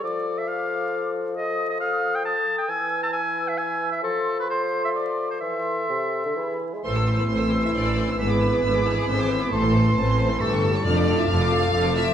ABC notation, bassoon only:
X:1
M:3/4
L:1/16
Q:1/4=135
K:Am
V:1 name="Bassoon" clef=bass
F,12- | F,8- F,2 z2 | E,12 | F,12 |
E,4 C,3 D, E,3 ^G, | E,12- | E,12 | E,12 |
A,12 |]